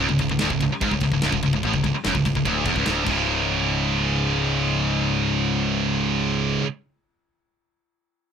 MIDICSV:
0, 0, Header, 1, 7, 480
1, 0, Start_track
1, 0, Time_signature, 4, 2, 24, 8
1, 0, Key_signature, 4, "minor"
1, 0, Tempo, 410116
1, 9741, End_track
2, 0, Start_track
2, 0, Title_t, "Distorted electric guitar"
2, 0, Program_c, 0, 30
2, 109, Note_on_c, 0, 37, 83
2, 213, Note_off_c, 0, 37, 0
2, 228, Note_on_c, 0, 37, 74
2, 349, Note_off_c, 0, 37, 0
2, 363, Note_on_c, 0, 37, 82
2, 453, Note_off_c, 0, 37, 0
2, 458, Note_on_c, 0, 38, 111
2, 580, Note_off_c, 0, 38, 0
2, 593, Note_on_c, 0, 37, 88
2, 696, Note_off_c, 0, 37, 0
2, 710, Note_on_c, 0, 37, 74
2, 813, Note_off_c, 0, 37, 0
2, 949, Note_on_c, 0, 44, 108
2, 1066, Note_off_c, 0, 44, 0
2, 1085, Note_on_c, 0, 37, 80
2, 1177, Note_off_c, 0, 37, 0
2, 1191, Note_on_c, 0, 37, 85
2, 1310, Note_off_c, 0, 37, 0
2, 1324, Note_on_c, 0, 37, 74
2, 1411, Note_off_c, 0, 37, 0
2, 1425, Note_on_c, 0, 37, 114
2, 1528, Note_off_c, 0, 37, 0
2, 1542, Note_on_c, 0, 37, 65
2, 1665, Note_off_c, 0, 37, 0
2, 1679, Note_on_c, 0, 37, 83
2, 1779, Note_off_c, 0, 37, 0
2, 1793, Note_on_c, 0, 37, 79
2, 1912, Note_off_c, 0, 37, 0
2, 1917, Note_on_c, 0, 45, 104
2, 2031, Note_off_c, 0, 45, 0
2, 2039, Note_on_c, 0, 37, 76
2, 2140, Note_off_c, 0, 37, 0
2, 2154, Note_on_c, 0, 37, 67
2, 2274, Note_off_c, 0, 37, 0
2, 2420, Note_on_c, 0, 42, 99
2, 2522, Note_off_c, 0, 42, 0
2, 2534, Note_on_c, 0, 37, 87
2, 2633, Note_off_c, 0, 37, 0
2, 2647, Note_on_c, 0, 37, 67
2, 2758, Note_off_c, 0, 37, 0
2, 2772, Note_on_c, 0, 37, 75
2, 2886, Note_off_c, 0, 37, 0
2, 2892, Note_on_c, 0, 38, 109
2, 3118, Note_off_c, 0, 38, 0
2, 3131, Note_on_c, 0, 40, 103
2, 3238, Note_off_c, 0, 40, 0
2, 3251, Note_on_c, 0, 37, 93
2, 3358, Note_off_c, 0, 37, 0
2, 3384, Note_on_c, 0, 38, 108
2, 3601, Note_off_c, 0, 38, 0
2, 3605, Note_on_c, 0, 37, 109
2, 3610, Note_on_c, 0, 44, 94
2, 3636, Note_on_c, 0, 49, 103
2, 3640, Note_on_c, 0, 56, 112
2, 3647, Note_on_c, 0, 64, 93
2, 7768, Note_off_c, 0, 37, 0
2, 7773, Note_off_c, 0, 44, 0
2, 7798, Note_off_c, 0, 49, 0
2, 7802, Note_off_c, 0, 56, 0
2, 7810, Note_off_c, 0, 64, 0
2, 9741, End_track
3, 0, Start_track
3, 0, Title_t, "Distorted electric guitar"
3, 0, Program_c, 1, 30
3, 4, Note_on_c, 1, 37, 112
3, 113, Note_off_c, 1, 37, 0
3, 9741, End_track
4, 0, Start_track
4, 0, Title_t, "Picked electric bass"
4, 0, Program_c, 2, 34
4, 105, Note_on_c, 2, 25, 78
4, 222, Note_off_c, 2, 25, 0
4, 228, Note_on_c, 2, 25, 85
4, 339, Note_off_c, 2, 25, 0
4, 346, Note_on_c, 2, 25, 81
4, 463, Note_off_c, 2, 25, 0
4, 486, Note_on_c, 2, 26, 106
4, 583, Note_off_c, 2, 26, 0
4, 590, Note_on_c, 2, 25, 92
4, 705, Note_off_c, 2, 25, 0
4, 710, Note_on_c, 2, 25, 85
4, 825, Note_off_c, 2, 25, 0
4, 953, Note_on_c, 2, 32, 106
4, 1059, Note_off_c, 2, 32, 0
4, 1066, Note_on_c, 2, 25, 95
4, 1175, Note_off_c, 2, 25, 0
4, 1182, Note_on_c, 2, 25, 89
4, 1301, Note_off_c, 2, 25, 0
4, 1309, Note_on_c, 2, 25, 82
4, 1425, Note_off_c, 2, 25, 0
4, 1448, Note_on_c, 2, 25, 112
4, 1542, Note_off_c, 2, 25, 0
4, 1549, Note_on_c, 2, 25, 93
4, 1665, Note_off_c, 2, 25, 0
4, 1672, Note_on_c, 2, 25, 77
4, 1783, Note_off_c, 2, 25, 0
4, 1790, Note_on_c, 2, 25, 81
4, 1906, Note_off_c, 2, 25, 0
4, 1912, Note_on_c, 2, 33, 97
4, 2027, Note_off_c, 2, 33, 0
4, 2034, Note_on_c, 2, 25, 86
4, 2138, Note_off_c, 2, 25, 0
4, 2145, Note_on_c, 2, 25, 88
4, 2263, Note_off_c, 2, 25, 0
4, 2405, Note_on_c, 2, 30, 97
4, 2502, Note_off_c, 2, 30, 0
4, 2509, Note_on_c, 2, 25, 89
4, 2625, Note_off_c, 2, 25, 0
4, 2637, Note_on_c, 2, 25, 75
4, 2742, Note_off_c, 2, 25, 0
4, 2749, Note_on_c, 2, 25, 79
4, 2865, Note_off_c, 2, 25, 0
4, 2873, Note_on_c, 2, 26, 103
4, 3099, Note_off_c, 2, 26, 0
4, 3114, Note_on_c, 2, 28, 108
4, 3214, Note_off_c, 2, 28, 0
4, 3221, Note_on_c, 2, 25, 82
4, 3341, Note_off_c, 2, 25, 0
4, 3362, Note_on_c, 2, 26, 106
4, 3577, Note_off_c, 2, 26, 0
4, 3584, Note_on_c, 2, 25, 89
4, 7700, Note_off_c, 2, 25, 0
4, 9741, End_track
5, 0, Start_track
5, 0, Title_t, "Muted distorted electric guitar strokes"
5, 827, Note_on_c, 9, 29, 61
5, 944, Note_off_c, 9, 29, 0
5, 2288, Note_on_c, 9, 29, 61
5, 2405, Note_off_c, 9, 29, 0
5, 9741, End_track
6, 0, Start_track
6, 0, Title_t, "Muted picked electric bass strokes"
6, 852, Note_on_c, 9, 29, 43
6, 969, Note_off_c, 9, 29, 0
6, 2288, Note_on_c, 9, 29, 45
6, 2406, Note_off_c, 9, 29, 0
6, 9741, End_track
7, 0, Start_track
7, 0, Title_t, "Drums"
7, 104, Note_on_c, 9, 36, 60
7, 219, Note_on_c, 9, 51, 85
7, 221, Note_off_c, 9, 36, 0
7, 224, Note_on_c, 9, 36, 84
7, 336, Note_off_c, 9, 51, 0
7, 341, Note_off_c, 9, 36, 0
7, 345, Note_on_c, 9, 36, 78
7, 457, Note_on_c, 9, 38, 122
7, 457, Note_on_c, 9, 51, 114
7, 462, Note_off_c, 9, 36, 0
7, 574, Note_off_c, 9, 38, 0
7, 574, Note_off_c, 9, 51, 0
7, 587, Note_on_c, 9, 36, 104
7, 704, Note_off_c, 9, 36, 0
7, 708, Note_on_c, 9, 36, 98
7, 711, Note_on_c, 9, 51, 79
7, 825, Note_off_c, 9, 36, 0
7, 828, Note_off_c, 9, 51, 0
7, 951, Note_on_c, 9, 36, 119
7, 951, Note_on_c, 9, 51, 115
7, 1068, Note_off_c, 9, 36, 0
7, 1068, Note_off_c, 9, 51, 0
7, 1069, Note_on_c, 9, 36, 80
7, 1176, Note_on_c, 9, 51, 82
7, 1186, Note_off_c, 9, 36, 0
7, 1187, Note_on_c, 9, 36, 89
7, 1294, Note_off_c, 9, 51, 0
7, 1304, Note_off_c, 9, 36, 0
7, 1307, Note_on_c, 9, 36, 82
7, 1424, Note_off_c, 9, 36, 0
7, 1427, Note_on_c, 9, 38, 122
7, 1427, Note_on_c, 9, 51, 89
7, 1544, Note_off_c, 9, 38, 0
7, 1544, Note_off_c, 9, 51, 0
7, 1550, Note_on_c, 9, 36, 109
7, 1667, Note_off_c, 9, 36, 0
7, 1670, Note_on_c, 9, 51, 72
7, 1671, Note_on_c, 9, 36, 85
7, 1787, Note_off_c, 9, 51, 0
7, 1788, Note_off_c, 9, 36, 0
7, 1791, Note_on_c, 9, 36, 90
7, 1906, Note_on_c, 9, 51, 87
7, 1908, Note_off_c, 9, 36, 0
7, 1910, Note_on_c, 9, 36, 93
7, 2023, Note_off_c, 9, 51, 0
7, 2027, Note_off_c, 9, 36, 0
7, 2031, Note_on_c, 9, 36, 67
7, 2148, Note_off_c, 9, 36, 0
7, 2153, Note_on_c, 9, 36, 83
7, 2156, Note_on_c, 9, 51, 73
7, 2270, Note_off_c, 9, 36, 0
7, 2273, Note_off_c, 9, 51, 0
7, 2394, Note_on_c, 9, 38, 111
7, 2394, Note_on_c, 9, 51, 108
7, 2511, Note_off_c, 9, 38, 0
7, 2511, Note_off_c, 9, 51, 0
7, 2515, Note_on_c, 9, 36, 104
7, 2632, Note_off_c, 9, 36, 0
7, 2637, Note_on_c, 9, 36, 99
7, 2645, Note_on_c, 9, 51, 79
7, 2754, Note_off_c, 9, 36, 0
7, 2754, Note_on_c, 9, 36, 80
7, 2762, Note_off_c, 9, 51, 0
7, 2871, Note_off_c, 9, 36, 0
7, 2872, Note_on_c, 9, 36, 105
7, 2875, Note_on_c, 9, 51, 108
7, 2989, Note_off_c, 9, 36, 0
7, 2992, Note_off_c, 9, 51, 0
7, 3106, Note_on_c, 9, 51, 87
7, 3109, Note_on_c, 9, 36, 112
7, 3224, Note_off_c, 9, 51, 0
7, 3226, Note_off_c, 9, 36, 0
7, 3229, Note_on_c, 9, 36, 75
7, 3346, Note_off_c, 9, 36, 0
7, 3347, Note_on_c, 9, 38, 118
7, 3347, Note_on_c, 9, 51, 105
7, 3464, Note_off_c, 9, 38, 0
7, 3464, Note_off_c, 9, 51, 0
7, 3585, Note_on_c, 9, 49, 82
7, 3588, Note_on_c, 9, 36, 110
7, 3702, Note_off_c, 9, 49, 0
7, 3705, Note_off_c, 9, 36, 0
7, 9741, End_track
0, 0, End_of_file